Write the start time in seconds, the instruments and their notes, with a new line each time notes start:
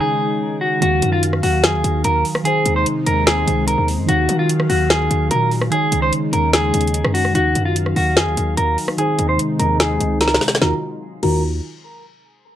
Already playing: analog synth pad C#3 G#3 D#4, synth keys D#3 D#4 G#4 C#5
0.00 clean electric guitar G#4
0.61 clean electric guitar F#4
0.80 808-style bass D#2, synth keys D#3 D#4 F#4 F5, analog synth pad D#3 F#3 F5, clean electric guitar F#4, closed hi-hat
1.02 808-style bass F#2, closed hi-hat
1.12 clean electric guitar F4
1.23 closed hi-hat
1.33 cross-stick
1.43 808-style bass D#2, clean electric guitar F#4, open hi-hat
1.64 808-style bass F2, clean electric guitar G#4, snare, closed hi-hat
1.74 808-style bass D#2
1.84 808-style bass D#2, closed hi-hat
2.04 808-style bass D#2, clean electric guitar A#4, closed hi-hat
2.25 open hi-hat
2.35 cross-stick
2.44 analog synth pad C3 G#3 D#4, synth keys D#3 D#4 G#4 C5, clean electric guitar G#4, closed hi-hat
2.66 808-style bass D#2, closed hi-hat
2.76 clean electric guitar C5
2.86 closed hi-hat
3.06 808-style bass D#2, clean electric guitar A#4, closed hi-hat
3.27 clean electric guitar G#4, snare, closed hi-hat
3.46 808-style bass C#2, synth keys D#3 D#4 G#4 C5, closed hi-hat
3.68 clean electric guitar A#4, closed hi-hat
3.78 808-style bass D#2
3.88 open hi-hat
3.98 808-style bass F#2
4.06 808-style bass D#2, synth keys D#3 D#4 F#4 F5, analog synth pad D#3 F#3 F5, clean electric guitar F#4, closed hi-hat
4.29 808-style bass D#3, closed hi-hat
4.39 clean electric guitar F4
4.49 closed hi-hat
4.60 cross-stick
4.70 808-style bass D#2, clean electric guitar F#4, open hi-hat
4.90 clean electric guitar G#4, snare, closed hi-hat
5.11 808-style bass D#2, closed hi-hat
5.31 808-style bass A#2, clean electric guitar A#4, closed hi-hat
5.51 open hi-hat
5.61 cross-stick
5.71 analog synth pad C#3 G#3 D#4, synth keys D#3 D#4 G#4 C#5, clean electric guitar G#4, closed hi-hat
5.92 808-style bass C#2, closed hi-hat
6.02 clean electric guitar C5
6.13 closed hi-hat
6.33 808-style bass D#2, clean electric guitar A#4, closed hi-hat
6.53 clean electric guitar G#4, snare, closed hi-hat
6.74 808-style bass D#2, closed hi-hat
6.81 closed hi-hat
6.87 closed hi-hat
6.94 closed hi-hat
7.04 808-style bass F#2, cross-stick
7.14 clean electric guitar F#4, open hi-hat
7.25 cross-stick
7.33 808-style bass D#2, synth keys D#3 D#4 F#4 F5, analog synth pad D#3 F#3 F5, clean electric guitar F#4, closed hi-hat
7.55 808-style bass F#2, closed hi-hat
7.65 clean electric guitar F4
7.76 closed hi-hat
7.86 cross-stick
7.96 808-style bass D#2, clean electric guitar F#4, open hi-hat
8.17 808-style bass F2, clean electric guitar G#4, snare, closed hi-hat
8.27 808-style bass D#2
8.37 808-style bass D#2, closed hi-hat
8.57 808-style bass D#2, clean electric guitar A#4, closed hi-hat
8.78 open hi-hat
8.88 cross-stick
8.97 analog synth pad C3 G#3 D#4, synth keys D#3 D#4 G#4 C5, clean electric guitar G#4, closed hi-hat
9.19 808-style bass D#2, closed hi-hat
9.29 clean electric guitar C5
9.39 closed hi-hat
9.59 808-style bass D#2, clean electric guitar A#4, closed hi-hat
9.80 clean electric guitar G#4, snare, closed hi-hat
10.00 808-style bass C#2, closed hi-hat
10.21 clean electric guitar A#4, snare, closed hi-hat
10.28 snare
10.34 snare
10.41 snare, open hi-hat
10.48 snare
10.55 snare
10.62 808-style bass D#2, analog synth pad D#3 F#3 F4, synth keys D#3 D#4 F4 F#4, clean electric guitar A#4, snare
11.23 808-style bass D#2, synth keys D#3 D#4 F4 F#4, clean electric guitar A#4, crash